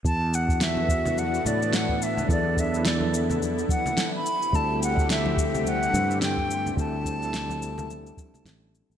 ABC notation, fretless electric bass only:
X:1
M:4/4
L:1/16
Q:"Swing 16ths" 1/4=107
K:Em
V:1 name="Fretless electric bass" clef=bass
E,,8- E,, z A,,4- A,, z | E,,8- E,, z6 z | D,,8- D,, z G,,4- G,, z | D,,8- D,, z3 A,,,2 z A,,, |]